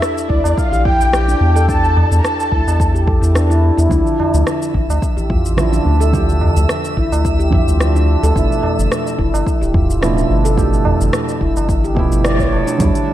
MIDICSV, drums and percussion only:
0, 0, Header, 1, 3, 480
1, 0, Start_track
1, 0, Tempo, 555556
1, 1461, Time_signature, 4, 2, 24, 8
1, 11349, End_track
2, 0, Start_track
2, 0, Title_t, "Tabla"
2, 148, Note_on_c, 9, 63, 44
2, 234, Note_off_c, 9, 63, 0
2, 381, Note_on_c, 9, 60, 74
2, 467, Note_off_c, 9, 60, 0
2, 743, Note_on_c, 9, 64, 72
2, 829, Note_off_c, 9, 64, 0
2, 1347, Note_on_c, 9, 63, 61
2, 1433, Note_off_c, 9, 63, 0
2, 1702, Note_on_c, 9, 60, 75
2, 1702, Note_on_c, 9, 63, 44
2, 1702, Note_on_c, 9, 64, 80
2, 1788, Note_off_c, 9, 60, 0
2, 1788, Note_off_c, 9, 63, 0
2, 1788, Note_off_c, 9, 64, 0
2, 2070, Note_on_c, 9, 63, 45
2, 2156, Note_off_c, 9, 63, 0
2, 2313, Note_on_c, 9, 60, 73
2, 2399, Note_off_c, 9, 60, 0
2, 2658, Note_on_c, 9, 64, 75
2, 2744, Note_off_c, 9, 64, 0
2, 2793, Note_on_c, 9, 63, 27
2, 2879, Note_off_c, 9, 63, 0
2, 3271, Note_on_c, 9, 60, 30
2, 3358, Note_off_c, 9, 60, 0
2, 3622, Note_on_c, 9, 64, 79
2, 3623, Note_on_c, 9, 63, 41
2, 3626, Note_on_c, 9, 60, 75
2, 3709, Note_off_c, 9, 63, 0
2, 3709, Note_off_c, 9, 64, 0
2, 3712, Note_off_c, 9, 60, 0
2, 3988, Note_on_c, 9, 63, 43
2, 4075, Note_off_c, 9, 63, 0
2, 4234, Note_on_c, 9, 60, 62
2, 4320, Note_off_c, 9, 60, 0
2, 4582, Note_on_c, 9, 64, 72
2, 4668, Note_off_c, 9, 64, 0
2, 5193, Note_on_c, 9, 63, 52
2, 5280, Note_off_c, 9, 63, 0
2, 5541, Note_on_c, 9, 60, 66
2, 5544, Note_on_c, 9, 63, 43
2, 5545, Note_on_c, 9, 64, 77
2, 5628, Note_off_c, 9, 60, 0
2, 5630, Note_off_c, 9, 63, 0
2, 5632, Note_off_c, 9, 64, 0
2, 5909, Note_on_c, 9, 63, 43
2, 5996, Note_off_c, 9, 63, 0
2, 6155, Note_on_c, 9, 60, 69
2, 6241, Note_off_c, 9, 60, 0
2, 6500, Note_on_c, 9, 64, 69
2, 6586, Note_off_c, 9, 64, 0
2, 7115, Note_on_c, 9, 60, 35
2, 7202, Note_off_c, 9, 60, 0
2, 7453, Note_on_c, 9, 64, 89
2, 7459, Note_on_c, 9, 60, 73
2, 7463, Note_on_c, 9, 63, 55
2, 7540, Note_off_c, 9, 64, 0
2, 7545, Note_off_c, 9, 60, 0
2, 7549, Note_off_c, 9, 63, 0
2, 7829, Note_on_c, 9, 63, 53
2, 7915, Note_off_c, 9, 63, 0
2, 8068, Note_on_c, 9, 60, 68
2, 8155, Note_off_c, 9, 60, 0
2, 8416, Note_on_c, 9, 64, 81
2, 8503, Note_off_c, 9, 64, 0
2, 9027, Note_on_c, 9, 63, 60
2, 9113, Note_off_c, 9, 63, 0
2, 9374, Note_on_c, 9, 60, 75
2, 9375, Note_on_c, 9, 63, 54
2, 9378, Note_on_c, 9, 64, 79
2, 9460, Note_off_c, 9, 60, 0
2, 9461, Note_off_c, 9, 63, 0
2, 9464, Note_off_c, 9, 64, 0
2, 9748, Note_on_c, 9, 63, 49
2, 9835, Note_off_c, 9, 63, 0
2, 9995, Note_on_c, 9, 60, 71
2, 10081, Note_off_c, 9, 60, 0
2, 10350, Note_on_c, 9, 64, 64
2, 10437, Note_off_c, 9, 64, 0
2, 10476, Note_on_c, 9, 63, 37
2, 10562, Note_off_c, 9, 63, 0
2, 10824, Note_on_c, 9, 60, 57
2, 10910, Note_off_c, 9, 60, 0
2, 10952, Note_on_c, 9, 60, 37
2, 11038, Note_off_c, 9, 60, 0
2, 11349, End_track
3, 0, Start_track
3, 0, Title_t, "Drums"
3, 20, Note_on_c, 9, 37, 87
3, 24, Note_on_c, 9, 82, 51
3, 106, Note_off_c, 9, 37, 0
3, 111, Note_off_c, 9, 82, 0
3, 154, Note_on_c, 9, 82, 34
3, 241, Note_off_c, 9, 82, 0
3, 258, Note_on_c, 9, 36, 57
3, 344, Note_off_c, 9, 36, 0
3, 395, Note_on_c, 9, 82, 66
3, 481, Note_off_c, 9, 82, 0
3, 498, Note_on_c, 9, 36, 101
3, 506, Note_on_c, 9, 82, 55
3, 584, Note_off_c, 9, 36, 0
3, 592, Note_off_c, 9, 82, 0
3, 634, Note_on_c, 9, 82, 34
3, 721, Note_off_c, 9, 82, 0
3, 738, Note_on_c, 9, 36, 101
3, 824, Note_off_c, 9, 36, 0
3, 872, Note_on_c, 9, 82, 65
3, 958, Note_off_c, 9, 82, 0
3, 980, Note_on_c, 9, 37, 98
3, 984, Note_on_c, 9, 82, 52
3, 1066, Note_off_c, 9, 37, 0
3, 1071, Note_off_c, 9, 82, 0
3, 1114, Note_on_c, 9, 82, 33
3, 1200, Note_off_c, 9, 82, 0
3, 1353, Note_on_c, 9, 82, 58
3, 1439, Note_off_c, 9, 82, 0
3, 1457, Note_on_c, 9, 36, 111
3, 1464, Note_on_c, 9, 82, 56
3, 1544, Note_off_c, 9, 36, 0
3, 1550, Note_off_c, 9, 82, 0
3, 1593, Note_on_c, 9, 82, 29
3, 1680, Note_off_c, 9, 82, 0
3, 1833, Note_on_c, 9, 82, 65
3, 1919, Note_off_c, 9, 82, 0
3, 1940, Note_on_c, 9, 37, 85
3, 1945, Note_on_c, 9, 82, 49
3, 2026, Note_off_c, 9, 37, 0
3, 2031, Note_off_c, 9, 82, 0
3, 2074, Note_on_c, 9, 82, 34
3, 2161, Note_off_c, 9, 82, 0
3, 2177, Note_on_c, 9, 36, 56
3, 2264, Note_off_c, 9, 36, 0
3, 2316, Note_on_c, 9, 82, 65
3, 2402, Note_off_c, 9, 82, 0
3, 2417, Note_on_c, 9, 36, 96
3, 2426, Note_on_c, 9, 82, 53
3, 2504, Note_off_c, 9, 36, 0
3, 2513, Note_off_c, 9, 82, 0
3, 2555, Note_on_c, 9, 82, 34
3, 2642, Note_off_c, 9, 82, 0
3, 2657, Note_on_c, 9, 36, 100
3, 2743, Note_off_c, 9, 36, 0
3, 2793, Note_on_c, 9, 82, 67
3, 2879, Note_off_c, 9, 82, 0
3, 2898, Note_on_c, 9, 37, 92
3, 2903, Note_on_c, 9, 82, 55
3, 2985, Note_off_c, 9, 37, 0
3, 2989, Note_off_c, 9, 82, 0
3, 3034, Note_on_c, 9, 82, 31
3, 3121, Note_off_c, 9, 82, 0
3, 3274, Note_on_c, 9, 82, 59
3, 3360, Note_off_c, 9, 82, 0
3, 3377, Note_on_c, 9, 36, 116
3, 3384, Note_on_c, 9, 82, 52
3, 3464, Note_off_c, 9, 36, 0
3, 3470, Note_off_c, 9, 82, 0
3, 3515, Note_on_c, 9, 82, 29
3, 3601, Note_off_c, 9, 82, 0
3, 3753, Note_on_c, 9, 82, 62
3, 3840, Note_off_c, 9, 82, 0
3, 3860, Note_on_c, 9, 37, 85
3, 3864, Note_on_c, 9, 82, 49
3, 3946, Note_off_c, 9, 37, 0
3, 3951, Note_off_c, 9, 82, 0
3, 3995, Note_on_c, 9, 82, 34
3, 4082, Note_off_c, 9, 82, 0
3, 4099, Note_on_c, 9, 36, 55
3, 4185, Note_off_c, 9, 36, 0
3, 4236, Note_on_c, 9, 82, 66
3, 4322, Note_off_c, 9, 82, 0
3, 4339, Note_on_c, 9, 36, 89
3, 4345, Note_on_c, 9, 82, 51
3, 4425, Note_off_c, 9, 36, 0
3, 4432, Note_off_c, 9, 82, 0
3, 4474, Note_on_c, 9, 82, 32
3, 4561, Note_off_c, 9, 82, 0
3, 4579, Note_on_c, 9, 36, 100
3, 4665, Note_off_c, 9, 36, 0
3, 4714, Note_on_c, 9, 82, 62
3, 4800, Note_off_c, 9, 82, 0
3, 4819, Note_on_c, 9, 37, 89
3, 4824, Note_on_c, 9, 82, 54
3, 4906, Note_off_c, 9, 37, 0
3, 4910, Note_off_c, 9, 82, 0
3, 4953, Note_on_c, 9, 82, 29
3, 5040, Note_off_c, 9, 82, 0
3, 5196, Note_on_c, 9, 82, 59
3, 5282, Note_off_c, 9, 82, 0
3, 5301, Note_on_c, 9, 36, 108
3, 5306, Note_on_c, 9, 82, 51
3, 5388, Note_off_c, 9, 36, 0
3, 5392, Note_off_c, 9, 82, 0
3, 5437, Note_on_c, 9, 82, 28
3, 5523, Note_off_c, 9, 82, 0
3, 5675, Note_on_c, 9, 82, 60
3, 5762, Note_off_c, 9, 82, 0
3, 5782, Note_on_c, 9, 37, 94
3, 5786, Note_on_c, 9, 82, 51
3, 5868, Note_off_c, 9, 37, 0
3, 5873, Note_off_c, 9, 82, 0
3, 5915, Note_on_c, 9, 82, 29
3, 6002, Note_off_c, 9, 82, 0
3, 6022, Note_on_c, 9, 36, 55
3, 6108, Note_off_c, 9, 36, 0
3, 6157, Note_on_c, 9, 82, 62
3, 6244, Note_off_c, 9, 82, 0
3, 6262, Note_on_c, 9, 36, 89
3, 6266, Note_on_c, 9, 82, 55
3, 6349, Note_off_c, 9, 36, 0
3, 6353, Note_off_c, 9, 82, 0
3, 6396, Note_on_c, 9, 82, 33
3, 6482, Note_off_c, 9, 82, 0
3, 6502, Note_on_c, 9, 36, 96
3, 6588, Note_off_c, 9, 36, 0
3, 6637, Note_on_c, 9, 82, 64
3, 6724, Note_off_c, 9, 82, 0
3, 6743, Note_on_c, 9, 37, 93
3, 6748, Note_on_c, 9, 82, 50
3, 6830, Note_off_c, 9, 37, 0
3, 6834, Note_off_c, 9, 82, 0
3, 6878, Note_on_c, 9, 82, 30
3, 6965, Note_off_c, 9, 82, 0
3, 7119, Note_on_c, 9, 82, 59
3, 7205, Note_off_c, 9, 82, 0
3, 7221, Note_on_c, 9, 36, 106
3, 7231, Note_on_c, 9, 82, 50
3, 7308, Note_off_c, 9, 36, 0
3, 7317, Note_off_c, 9, 82, 0
3, 7362, Note_on_c, 9, 82, 27
3, 7449, Note_off_c, 9, 82, 0
3, 7599, Note_on_c, 9, 82, 64
3, 7686, Note_off_c, 9, 82, 0
3, 7704, Note_on_c, 9, 37, 90
3, 7708, Note_on_c, 9, 82, 50
3, 7790, Note_off_c, 9, 37, 0
3, 7795, Note_off_c, 9, 82, 0
3, 7837, Note_on_c, 9, 82, 30
3, 7924, Note_off_c, 9, 82, 0
3, 7939, Note_on_c, 9, 36, 55
3, 8026, Note_off_c, 9, 36, 0
3, 8077, Note_on_c, 9, 82, 64
3, 8164, Note_off_c, 9, 82, 0
3, 8178, Note_on_c, 9, 36, 91
3, 8188, Note_on_c, 9, 82, 52
3, 8265, Note_off_c, 9, 36, 0
3, 8275, Note_off_c, 9, 82, 0
3, 8318, Note_on_c, 9, 82, 32
3, 8404, Note_off_c, 9, 82, 0
3, 8418, Note_on_c, 9, 36, 101
3, 8504, Note_off_c, 9, 36, 0
3, 8556, Note_on_c, 9, 82, 64
3, 8642, Note_off_c, 9, 82, 0
3, 8662, Note_on_c, 9, 37, 93
3, 8667, Note_on_c, 9, 82, 51
3, 8749, Note_off_c, 9, 37, 0
3, 8753, Note_off_c, 9, 82, 0
3, 8797, Note_on_c, 9, 82, 30
3, 8883, Note_off_c, 9, 82, 0
3, 9034, Note_on_c, 9, 82, 61
3, 9120, Note_off_c, 9, 82, 0
3, 9137, Note_on_c, 9, 36, 109
3, 9145, Note_on_c, 9, 82, 54
3, 9224, Note_off_c, 9, 36, 0
3, 9232, Note_off_c, 9, 82, 0
3, 9275, Note_on_c, 9, 82, 29
3, 9361, Note_off_c, 9, 82, 0
3, 9514, Note_on_c, 9, 82, 59
3, 9600, Note_off_c, 9, 82, 0
3, 9618, Note_on_c, 9, 37, 99
3, 9622, Note_on_c, 9, 82, 47
3, 9704, Note_off_c, 9, 37, 0
3, 9709, Note_off_c, 9, 82, 0
3, 9753, Note_on_c, 9, 82, 32
3, 9839, Note_off_c, 9, 82, 0
3, 9858, Note_on_c, 9, 36, 57
3, 9944, Note_off_c, 9, 36, 0
3, 9994, Note_on_c, 9, 82, 60
3, 10081, Note_off_c, 9, 82, 0
3, 10098, Note_on_c, 9, 36, 100
3, 10103, Note_on_c, 9, 82, 54
3, 10184, Note_off_c, 9, 36, 0
3, 10190, Note_off_c, 9, 82, 0
3, 10234, Note_on_c, 9, 82, 34
3, 10320, Note_off_c, 9, 82, 0
3, 10339, Note_on_c, 9, 36, 95
3, 10425, Note_off_c, 9, 36, 0
3, 10474, Note_on_c, 9, 82, 63
3, 10560, Note_off_c, 9, 82, 0
3, 10580, Note_on_c, 9, 37, 99
3, 10585, Note_on_c, 9, 82, 52
3, 10667, Note_off_c, 9, 37, 0
3, 10671, Note_off_c, 9, 82, 0
3, 10710, Note_on_c, 9, 36, 59
3, 10714, Note_on_c, 9, 82, 31
3, 10796, Note_off_c, 9, 36, 0
3, 10801, Note_off_c, 9, 82, 0
3, 10953, Note_on_c, 9, 82, 61
3, 11040, Note_off_c, 9, 82, 0
3, 11059, Note_on_c, 9, 46, 58
3, 11059, Note_on_c, 9, 64, 79
3, 11061, Note_on_c, 9, 36, 126
3, 11064, Note_on_c, 9, 82, 60
3, 11145, Note_off_c, 9, 46, 0
3, 11145, Note_off_c, 9, 64, 0
3, 11147, Note_off_c, 9, 36, 0
3, 11150, Note_off_c, 9, 82, 0
3, 11191, Note_on_c, 9, 46, 30
3, 11195, Note_on_c, 9, 82, 32
3, 11277, Note_off_c, 9, 46, 0
3, 11282, Note_off_c, 9, 82, 0
3, 11349, End_track
0, 0, End_of_file